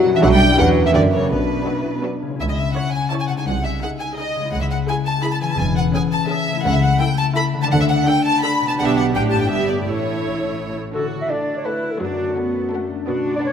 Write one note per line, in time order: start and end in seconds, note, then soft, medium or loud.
0.00 0.15 F#2 medium
0.00 0.14 F#3 medium
0.00 0.14 G3 medium
0.00 0.17 A#3 soft
0.00 0.14 E4 medium
0.00 0.20 E4 soft
0.00 0.13 F#4 medium
0.00 0.17 F#4 soft
0.00 0.22 F#4 medium
0.00 0.13 A#4 medium
0.00 0.13 F#5 medium
0.05 0.51 B2 medium
0.09 0.53 B3 medium
0.14 0.18 E3 medium
0.14 0.55 D4 medium
0.14 0.19 E5 medium
0.14 0.23 E5 medium
0.18 0.57 F#4 medium
0.18 0.49 F#4 medium
0.18 0.49 B4 medium
0.23 0.51 B1 medium
0.23 0.50 F#3 medium
0.23 0.32 F#3 medium
0.23 0.58 D4 medium
0.23 0.49 D4 medium
0.23 0.27 F#5 loud
0.23 0.32 F#5 medium
0.32 0.41 G3 medium
0.32 0.58 G5 loud
0.32 0.57 G5 medium
0.40 0.86 E2 medium
0.45 1.25 C#4 soft
0.50 0.84 E4 medium
0.54 0.84 E4 medium
0.54 0.89 G4 medium
0.54 0.84 G4 medium
0.58 0.87 E2 medium
0.58 0.85 F#3 medium
0.58 0.85 G3 medium
0.58 0.85 C#4 medium
0.58 0.94 B4 medium
0.58 0.83 F#5 medium
0.58 0.67 F#5 medium
0.77 1.23 F#2 medium
0.81 1.25 A#3 soft
0.85 0.95 E3 medium
0.85 1.27 E4 soft
0.85 0.94 E5 medium
0.85 0.90 E5 medium
0.90 1.30 G4 soft
0.94 1.23 F#2 medium
0.94 1.02 D3 medium
0.94 1.21 F#3 medium
0.94 1.21 A#3 medium
0.94 1.21 E4 medium
0.94 1.21 G4 medium
0.94 1.31 A#4 medium
0.94 1.01 D5 medium
0.94 1.11 D5 medium
1.12 2.32 B2 medium
1.12 1.30 C#3 medium
1.12 1.30 C#5 medium
1.18 2.34 B3 soft
1.22 2.37 D4 soft
1.27 2.39 F#4 soft
1.27 1.99 B4 medium
1.31 1.59 B1 medium
1.31 2.04 B2 medium
1.31 1.64 D4 soft
1.31 2.02 B4 medium
1.66 1.94 F#3 soft
1.66 1.94 B3 soft
1.66 1.93 D4 medium
1.66 1.71 D4 medium
1.66 1.93 F#4 soft
1.78 1.90 E4 medium
2.03 2.30 F#3 soft
2.03 2.30 B3 soft
2.03 2.16 D4 soft
2.03 2.31 D4 soft
2.03 2.31 F#4 soft
2.22 3.39 C#3 soft
2.26 3.32 G#3 soft
2.26 2.34 C#4 soft
2.31 3.44 C#4 soft
2.36 3.46 E4 soft
2.40 2.68 C#2 medium
2.40 2.44 E5 medium
2.49 2.52 D#5 soft
2.49 2.57 D#5 medium
2.56 2.74 E5 medium
2.74 3.02 E4 soft
2.74 3.02 C#5 soft
2.74 2.92 F#5 medium
2.74 2.93 F#5 medium
2.91 3.10 G#5 medium
2.91 3.01 G#5 soft
3.09 3.38 E4 soft
3.09 3.38 C#5 soft
3.09 3.13 A5 medium
3.09 3.14 A5 medium
3.20 3.28 G#5 medium
3.20 3.24 G#5 soft
3.28 4.45 C3 soft
3.28 3.32 F#5 medium
3.28 3.32 F#5 soft
3.33 4.39 G#3 soft
3.37 4.50 D#4 soft
3.37 3.41 G#5 medium
3.37 3.46 G#5 medium
3.42 4.48 G#4 soft
3.47 3.75 C2 medium
3.47 3.54 F#5 medium
3.47 3.64 F#5 medium
3.64 3.71 E5 medium
3.64 3.82 E5 medium
3.82 4.08 D#4 soft
3.82 4.08 G#4 soft
3.82 3.89 F#5 medium
3.82 3.90 F#5 medium
4.00 4.17 G#5 medium
4.00 4.07 G#5 medium
4.16 4.45 D#4 soft
4.16 4.45 G#4 soft
4.16 4.52 D#5 medium
4.36 5.52 C#3 soft
4.40 6.60 G#3 soft
4.45 5.49 E4 soft
4.49 5.53 G#4 soft
4.49 4.61 F#5 medium
4.53 4.81 C#2 medium
4.53 4.57 F#5 medium
4.61 4.65 E5 soft
4.61 4.66 E5 medium
4.71 4.78 F#5 medium
4.88 5.15 E4 soft
4.88 5.15 G#4 medium
4.88 4.96 G#5 medium
5.06 5.24 A5 medium
5.06 5.14 A5 medium
5.24 5.50 E4 soft
5.24 5.50 G#4 soft
5.24 5.27 B5 medium
5.24 5.33 B5 medium
5.32 5.36 A5 medium
5.32 5.37 A5 medium
5.41 6.57 E3 medium
5.41 5.50 G#5 soft
5.41 5.45 G#5 medium
5.46 7.66 C#4 soft
5.50 6.55 E4 soft
5.50 5.59 A5 medium
5.54 6.64 G#4 soft
5.58 5.87 E1 medium
5.58 5.87 E2 medium
5.58 5.76 G#5 medium
5.58 5.66 G#5 medium
5.76 5.84 F#5 medium
5.94 6.21 C#4 medium
5.94 6.21 G#4 medium
5.94 6.01 G#5 medium
5.94 6.02 G#5 medium
6.12 6.29 A5 medium
6.12 6.19 A5 medium
6.28 6.56 C#4 medium
6.28 6.56 G#4 medium
6.28 6.63 E5 medium
6.28 6.65 E5 medium
6.48 7.64 C#3 medium
6.52 7.57 A3 soft
6.56 7.69 E4 soft
6.61 6.93 C#2 medium
6.61 7.66 A4 soft
6.61 6.73 F#5 medium
6.65 6.93 C#3 medium
6.65 6.74 F#5 medium
6.72 6.82 E5 medium
6.72 6.83 E5 medium
6.81 6.99 F#5 medium
6.81 7.01 F#5 medium
6.99 7.27 E4 medium
6.99 7.27 A4 medium
6.99 7.06 G5 medium
6.99 7.18 G5 medium
7.17 7.25 A5 medium
7.17 7.26 A5 medium
7.35 7.63 E4 medium
7.35 7.63 A4 medium
7.35 7.43 B5 medium
7.35 7.44 B5 medium
7.54 8.71 D3 medium
7.58 8.73 A3 soft
7.63 8.69 D4 soft
7.63 7.66 A5 medium
7.67 8.78 A4 soft
7.67 7.75 F#5 medium
7.72 8.00 D2 medium
7.72 8.00 D3 medium
7.72 7.81 F#5 medium
7.80 7.84 E5 medium
7.80 7.85 E5 medium
7.88 8.06 F#5 medium
7.88 7.97 F#5 medium
8.07 8.34 D4 medium
8.07 8.34 A4 medium
8.07 8.25 G5 medium
8.24 8.42 A5 medium
8.24 8.43 A5 medium
8.42 8.70 D4 medium
8.42 8.70 A4 medium
8.42 8.68 B5 medium
8.42 8.51 B5 medium
8.61 9.42 B2 medium
8.65 9.36 B3 soft
8.65 8.72 A5 medium
8.70 9.40 D4 soft
8.70 8.73 A5 medium
8.74 9.45 G4 soft
8.74 8.87 F#5 medium
8.78 9.12 B1 medium
8.78 9.12 B2 medium
8.78 9.12 D4 medium
8.78 9.12 G4 medium
8.78 8.82 F#5 medium
8.87 8.96 E5 soft
8.87 8.96 E5 medium
8.96 9.03 F#5 medium
8.96 9.04 F#5 medium
9.14 9.50 A1 medium
9.14 9.50 A2 medium
9.14 9.49 D4 soft
9.14 9.49 G4 soft
9.14 9.22 G5 medium
9.31 9.79 G2 soft
9.31 9.40 A5 medium
9.37 9.81 B3 soft
9.37 9.50 G5 soft
9.41 9.83 D4 soft
9.41 9.50 G5 medium
9.46 9.86 G1 soft
9.46 9.86 G4 soft
9.46 9.67 E5 medium
9.46 9.68 E5 medium
9.51 9.87 G2 soft
9.51 9.86 B3 soft
9.51 9.86 G4 soft
9.68 10.88 A2 soft
9.68 9.75 D5 soft
9.68 9.86 D5 medium
9.73 11.11 A3 soft
9.78 10.92 E4 soft
9.87 10.75 A1 soft
9.87 10.75 A2 soft
9.87 10.76 A3 soft
9.87 10.78 E4 soft
9.87 10.77 C#5 medium
9.87 10.75 C#5 soft
10.95 12.04 D3 soft
10.95 11.24 D3 medium
10.95 11.28 F#4 soft
10.95 11.07 A4 medium
11.12 11.64 A3 soft
11.21 11.31 E5 soft
11.30 11.57 A3 soft
11.30 11.66 D4 soft
11.30 11.57 A4 soft
11.30 12.53 A4 soft
11.30 11.56 D5 soft
11.30 11.57 F#5 soft
11.47 11.81 F#4 soft
11.57 11.67 C#5 soft
11.65 12.17 A3 soft
11.65 11.93 A3 soft
11.65 12.02 E4 soft
11.65 11.93 A4 soft
11.65 11.93 B4 soft
11.65 11.93 F#5 soft
11.83 12.35 F#4 soft
11.91 12.00 A4 soft
12.00 13.10 F#2 soft
12.00 12.30 F#3 medium
12.00 12.37 D4 soft
12.00 12.89 F#4 medium
12.18 12.89 A3 soft
12.36 12.72 B3 soft
12.36 12.64 D4 soft
12.36 13.43 F#4 soft
12.36 12.63 A4 soft
12.36 12.63 F#5 soft
12.54 13.10 A4 soft
12.72 13.09 A3 soft
12.72 12.99 D4 soft
12.72 13.53 D4 soft
12.72 12.99 A4 soft
12.72 12.99 F#5 soft
12.91 13.10 A3 soft
13.08 13.53 B2 soft
13.08 13.37 B3 medium
13.08 13.53 D4 soft
13.08 13.33 F#4 medium
13.26 13.53 B3 soft
13.36 13.40 D5 medium
13.43 13.53 D4 soft
13.43 13.53 F#4 soft
13.43 13.53 B4 medium
13.43 13.53 C#5 medium
13.43 13.53 F#5 soft